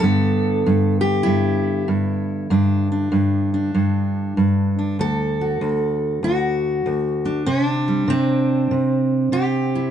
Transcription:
0.00 G2 D3 B3 A4
0.66 G2
1.01 G4
1.23 G2 E4
1.88 G2
2.50 G2 D4
2.92 D4
3.12 G2
3.54 D4
3.74 G2
4.37 G2
4.79 D4
4.99 D2 A4
5.41 F#4
5.61 D2
6.23 D2 F#4
6.86 D2
7.25 D4
7.46 C3 C#4
7.66 D4
7.88 G3
8.08 C3 C4
8.71 C3
9.32 C3 G4
9.75 E4

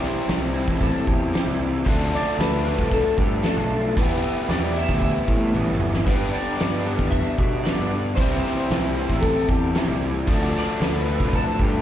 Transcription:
Already playing: C3 E3 G3 C4 E4 G4 C5
0.03 snare
0.28 C2, snare, open hi-hat
0.53 C3 G3 C4 E4
0.68 A1, kick
0.81 A4, kick, open hi-hat
1.07 E2 G4, kick
1.32 C3 G3 C4 E4, snare, open hi-hat
1.47 C2
1.85 D2 D3 F3 A3 D4 F4, kick, open hi-hat
1.89 A4
2.15 D5, snare
2.39 D2 B4, snare, open hi-hat
2.63 D3 A3 D4 F4
2.78 C2, kick
2.91 A4, kick, open hi-hat
3.18 G2 G4, kick
3.43 D3 A3 D4 F4 A4, snare, open hi-hat
3.57 B1
3.96 E2 E3 G3 B3 E4 B4, kick, open hi-hat
4.01 G4
4.49 E2 D5, snare, open hi-hat
4.73 E3 G3 B3 E4
4.77 E5
4.89 D2, kick, snare
5.02 kick, open hi-hat
5.28 A2, kick
5.53 A1 E3 G3 B3 E4, high tom
5.67 mid tom
5.80 G1, mid tom
5.94 snare
6.06 G2 D3 G3 B3 D4 B4, kick, open hi-hat
6.10 G4
6.32 D5
6.57 G2 D5, snare, open hi-hat
6.85 G2 D3 G3 B3 D4
6.98 E2, kick
7.11 E5, kick, open hi-hat
7.38 B2, kick
7.63 G2 D3 G3 B3 D4 D5, snare, open hi-hat
7.79 G2
8.15 C2 C3 E3 G3 C4 E4 C5, kick, open hi-hat
8.20 G4
8.45 snare
8.71 C2, snare, open hi-hat
8.95 C3 G3 C4 E4
9.09 A1, kick, snare
9.21 A4, kick, open hi-hat
9.48 E2 G4, kick
9.73 C3 G3 C4 E4, snare, open hi-hat
9.88 C2
10.26 D2 D3 F3 A3 D4, kick, open hi-hat
10.31 A4
10.55 D5, snare
10.80 D2 B4, snare, open hi-hat
11.06 D3 F3 A3 D4
11.20 C2, kick, snare
11.33 A4, kick, open hi-hat
11.59 G2 G4, kick

